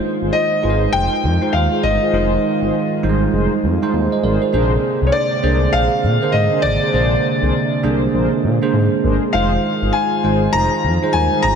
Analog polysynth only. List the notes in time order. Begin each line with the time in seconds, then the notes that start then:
0.21 D#4 F4 G#4 C5
0.63 D#4 F4 G#4 C5
0.93 D#4 F4 G#4 C5
1.42 D#4 F4 G#4 C5
1.72 D#4 F4 G#4 C5
2.02 D#4 F4 G#4 C5
2.13 D#4 F4 G#4 C5
2.62 D#4 F4 G#4 C5
3.03 D#4 F4 G#4 C5
3.33 D#4 F4 G#4 C5
3.81 D#4 F4 G#4 C5
4.23 D#4 F4 G#4 C5
4.53 D4 G#4 A#4 C5
5.01 D4 G#4 A#4 C5
5.43 D4 G#4 A#4 C5
5.73 D4 G#4 A#4 C5
6.21 D4 G#4 A#4 C5
6.52 D4 G#4 A#4 C5
6.81 D4 G#4 A#4 C5
6.93 D4 G#4 A#4 C5
7.42 D4 G#4 A#4 C5
7.83 D4 G#4 A#4 C5
8.13 D4 G#4 A#4 C5
8.62 D4 G#4 A#4 C5
9.03 D4 G#4 A#4 C5
9.33 D#4 F4 G#4 C5
9.82 D#4 F4 G#4 C5
10.23 D#4 F4 G#4 C5
10.53 D#4 F4 G#4 C5
11.02 D#4 F4 G#4 C5
11.32 D#4 F4 G#4 C5